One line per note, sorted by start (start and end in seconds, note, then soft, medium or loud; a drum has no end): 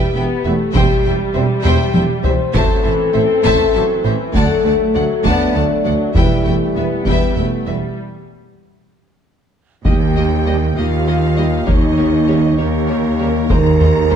0.00 0.14 G3 medium
0.00 0.74 G4 medium
0.00 0.13 B4 medium
0.00 0.13 E5 medium
0.00 0.13 G5 medium
0.14 0.26 E1 soft
0.14 0.23 E1 soft
0.14 0.25 E2 soft
0.14 0.44 B3 medium
0.14 0.23 B4 medium
0.14 0.22 E5 medium
0.14 0.23 G5 medium
0.44 0.56 E1 soft
0.44 0.53 E1 soft
0.44 0.53 E2 soft
0.44 0.55 G3 medium
0.44 0.75 A3 medium
0.44 0.55 B3 medium
0.44 0.52 B4 medium
0.44 0.52 E5 medium
0.73 0.87 E1 medium
0.73 0.83 E1 medium
0.73 0.83 E2 medium
0.73 2.51 G3 medium
0.73 1.63 G4 loud
0.73 1.02 C5 medium
0.73 1.02 E5 medium
0.73 1.03 G5 medium
0.73 taiko medium
1.04 1.17 E1 soft
1.04 1.13 E1 medium
1.04 1.13 E2 medium
1.04 1.12 C5 soft
1.04 1.12 E5 medium
1.04 1.12 G5 soft
1.33 1.43 E1 medium
1.33 1.47 E1 soft
1.33 1.42 E2 medium
1.33 1.46 G3 medium
1.33 1.45 C4 medium
1.33 1.42 C5 medium
1.33 1.42 E5 medium
1.63 1.77 E1 medium
1.63 1.73 E1 medium
1.63 1.73 E2 medium
1.63 2.24 G4 medium
1.63 1.92 C5 medium
1.63 1.92 E5 medium
1.63 1.92 G5 medium
1.63 taiko low-mid medium
1.93 2.03 E1 soft
1.93 2.07 E1 soft
1.93 2.03 E2 medium
1.93 2.01 C5 medium
1.93 2.01 E5 medium
1.93 2.02 G5 medium
1.93 taiko high medium
2.23 2.37 E1 soft
2.23 2.34 E1 medium
2.23 2.34 E2 soft
2.23 2.34 G3 medium
2.23 2.34 C4 medium
2.23 2.32 C5 medium
2.23 2.54 C5 medium
2.23 2.31 E5 medium
2.23 taiko low medium
2.54 2.67 A1 medium
2.54 2.63 A1 medium
2.54 2.62 A2 medium
2.54 4.30 E3 medium
2.54 2.84 F#3 medium
2.54 4.30 C4 medium
2.54 4.17 A4 loud
2.54 2.82 C5 medium
2.54 2.82 E5 medium
2.54 2.82 A5 medium
2.54 taiko medium
2.83 2.97 A1 soft
2.83 2.93 A1 medium
2.83 2.93 A2 medium
2.83 3.15 E3 medium
2.83 2.91 C5 soft
2.83 2.91 E5 soft
2.83 2.91 A5 soft
3.13 3.22 A1 soft
3.13 3.27 A1 soft
3.13 3.23 A2 medium
3.13 3.44 C4 medium
3.13 3.21 C5 medium
3.13 3.21 E5 medium
3.43 3.56 A1 medium
3.43 3.53 A1 medium
3.43 3.52 A2 medium
3.43 3.75 A3 medium
3.43 3.72 C5 medium
3.43 3.72 E5 medium
3.43 3.72 A5 medium
3.43 taiko medium
3.74 3.86 A1 soft
3.74 3.82 A1 soft
3.74 3.83 A2 medium
3.74 4.04 F#3 medium
3.74 3.82 C5 medium
3.74 3.83 E5 medium
3.74 3.82 A5 medium
4.04 4.16 A1 medium
4.04 4.12 A1 medium
4.04 4.12 A2 medium
4.04 4.34 E3 medium
4.04 4.12 C5 medium
4.04 4.13 E5 medium
4.34 4.46 D2 medium
4.34 4.42 D2 medium
4.34 4.43 D2 medium
4.34 4.64 F#3 medium
4.34 6.12 F#3 medium
4.34 6.12 A3 medium
4.34 5.23 A4 loud
4.34 4.62 D5 medium
4.34 4.63 F#5 medium
4.34 4.62 A5 medium
4.34 taiko medium
4.64 4.76 D2 soft
4.64 4.73 D2 medium
4.64 4.94 A3 medium
4.64 4.73 D5 soft
4.64 4.73 F#5 medium
4.64 4.74 A5 soft
4.94 5.06 D2 soft
4.94 5.02 D2 soft
4.94 5.03 D2 soft
4.94 5.25 F#3 medium
4.94 5.03 D5 medium
4.94 5.03 F#5 medium
5.24 5.36 D2 medium
5.24 5.33 D2 medium
5.24 5.55 B3 medium
5.24 6.15 D4 medium
5.24 5.53 D5 medium
5.24 5.52 F#5 medium
5.24 5.53 A5 medium
5.24 taiko medium
5.54 5.66 D2 soft
5.54 5.63 D2 soft
5.54 5.85 A3 medium
5.54 5.63 D5 medium
5.54 5.62 F#5 soft
5.54 5.63 A5 medium
5.84 5.96 D2 soft
5.84 5.93 D2 soft
5.84 5.93 D2 medium
5.84 6.15 F#3 medium
5.84 5.93 D5 medium
5.84 5.93 F#5 soft
6.14 6.26 E1 medium
6.14 6.24 E1 medium
6.14 7.02 E2 medium
6.14 6.24 E2 medium
6.14 7.94 E3 medium
6.14 6.44 G3 medium
6.14 7.97 G3 medium
6.14 7.04 E4 medium
6.14 6.43 B4 medium
6.14 6.43 E5 medium
6.14 6.43 G5 medium
6.14 taiko medium
6.44 6.56 E1 soft
6.44 6.54 E1 medium
6.44 6.54 E2 soft
6.44 6.75 A3 medium
6.44 6.54 B4 soft
6.44 6.54 E5 soft
6.44 6.53 G5 soft
6.74 6.87 E1 soft
6.74 6.84 E1 soft
6.74 6.84 E2 soft
6.74 7.06 B3 medium
6.74 6.85 B4 soft
6.74 6.84 E5 soft
7.04 7.18 E1 medium
7.04 7.14 E1 medium
7.04 7.14 E2 medium
7.04 7.36 G3 medium
7.04 7.97 B3 medium
7.04 7.35 B4 medium
7.04 7.35 E5 medium
7.04 7.34 G5 soft
7.04 taiko medium
7.36 7.48 E1 soft
7.36 7.45 E1 soft
7.36 7.44 E2 soft
7.36 7.67 A3 medium
7.36 7.44 B4 soft
7.36 7.45 E5 soft
7.36 7.45 G5 soft
7.67 7.79 E1 soft
7.67 7.76 E1 soft
7.67 7.75 E2 soft
7.67 7.98 G3 medium
7.67 7.76 B4 soft
7.67 7.75 E5 soft
9.84 10.66 D#2 medium
9.84 14.16 A#3 soft
9.84 9.93 A#3 soft
9.84 14.16 D#4 soft
9.84 13.45 G4 soft
9.84 9.93 G4 soft
9.84 10.73 G4 medium
9.84 11.63 D#5 soft
9.84 9.93 D#5 medium
9.84 10.73 G5 medium
9.84 taiko medium
10.16 10.25 A#3 soft
10.16 10.25 G4 soft
10.16 10.24 D#5 soft
10.46 10.57 D#3 soft
10.46 10.56 G3 soft
10.46 10.55 A#3 soft
10.46 10.55 G4 soft
10.46 10.54 D#5 soft
10.77 11.57 D#2 medium
10.77 10.85 A#3 soft
10.77 11.68 F4 medium
10.77 10.86 G4 soft
10.77 10.85 D#5 soft
10.77 11.66 F5 medium
11.07 11.15 A#3 soft
11.07 11.16 G4 soft
11.07 11.15 D#5 soft
11.36 11.47 D#3 soft
11.36 11.47 G3 soft
11.36 11.46 A#3 soft
11.36 11.46 G4 soft
11.36 11.45 D#5 soft
11.66 12.47 D#2 medium
11.66 12.48 D#2 medium
11.66 11.74 A#3 medium
11.66 12.56 D#4 medium
11.66 11.75 G4 soft
11.66 13.49 C#5 medium
11.66 11.74 C#5 medium
11.66 12.58 D#5 medium
11.66 taiko medium
11.97 12.06 A#3 soft
11.97 12.06 G4 soft
11.97 12.05 C#5 soft
12.28 12.38 C#3 soft
12.28 12.38 G3 soft
12.28 12.36 A#3 soft
12.28 12.36 G4 soft
12.28 12.36 C#5 soft
12.58 13.39 D#2 medium
12.58 13.50 A#3 medium
12.58 12.67 A#3 medium
12.58 12.67 G4 soft
12.58 13.48 A#4 medium
12.58 12.66 C#5 soft
12.87 12.97 A#3 soft
12.87 12.97 G4 soft
12.87 12.95 C#5 soft
13.19 13.30 C#3 medium
13.19 13.30 G3 medium
13.19 13.28 A#3 soft
13.19 13.28 G4 soft
13.19 13.27 C#5 soft
13.49 14.16 D#2 medium
13.49 13.58 G#3 medium
13.49 13.58 G#4 medium
13.49 14.16 G#4 medium
13.49 14.16 A#4 loud
13.49 13.57 C5 medium
13.49 14.16 C5 medium
13.49 14.16 A#5 medium
13.49 taiko medium
13.80 13.88 G#3 soft
13.80 13.88 G#4 medium
13.80 13.88 C5 soft
13.80 taiko low-mid soft
14.10 14.16 C3 medium
14.10 14.16 G#3 medium
14.10 14.16 G#4 soft
14.10 14.16 C5 medium
14.10 taiko low-mid medium